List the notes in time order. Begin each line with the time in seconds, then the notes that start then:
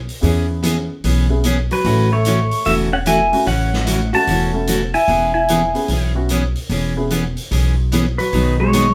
0.09 open hi-hat
0.21 E2 E3 B3 C#4 E4 G#4, open hi-hat
0.62 E3 B3 C#4 E4 G#4, closed hi-hat
1.04 B1 E3 B3 C#4 G#4, open hi-hat
1.29 B3 C#4 E4 G#4
1.44 E3 B3 C#4 G#4, closed hi-hat
1.71 F#3 B4, open hi-hat
1.84 A1 C#3 E3 A3 C#4 E4 F#4, open hi-hat
2.12 A3 C#5
2.25 C#3 E3 A3 C#4 F#4, closed hi-hat
2.51 open hi-hat
2.65 E1 C#3 E3 A3 C#4 F#4 E5, open hi-hat
2.93 C#4 F#5
3.06 C#3 E3 A3 C#4 E4 F#4 G#5, closed hi-hat
3.32 A3 C#4 E4 F#4, open hi-hat
3.46 A1 C#3 E3 A3 C#4 F#4 F#5, open hi-hat
3.73 snare
3.86 C#3 E3 A3 C#4 F#4, closed hi-hat
4.13 A3 C#4 E4 F#4 A5, open hi-hat
4.27 E1 C#3 E3 A3 C#4 F#4, open hi-hat
4.53 A3 C#4 E4 A4
4.67 C#3 E3 A3 C#4 F#4, closed hi-hat
4.94 E4 G#5, open hi-hat
5.08 E1 E3 B3 C#4 G#4, open hi-hat
5.34 E4 G#5
5.48 E3 B3 C#4 G#4, closed hi-hat
5.74 B3 C#4 E4 G#4, open hi-hat
5.88 B1 E3 B3 C#4 G#4, open hi-hat
6.15 B3 C#4 E4 F#4
6.29 E3 B3 C#4 G#4, closed hi-hat
6.56 open hi-hat
6.69 E1 E3 B3 C#4 G#4, open hi-hat
6.96 B3 C#4 E4 G#4
7.10 E3 B3 C#4 G#4, closed hi-hat
7.37 open hi-hat
7.51 B1 E3 B3 C#4 G#4, open hi-hat
7.92 E3 B3 C#4 G#4, closed hi-hat
8.18 F#3 B4, open hi-hat
8.33 B1 B2 D#3 F#3 B3 D#4 G#4, open hi-hat
8.58 G#3 B3 D#4 F#4 G#4 C#5
8.73 B2 D#3 F#3 B3 D#4 G#4, closed hi-hat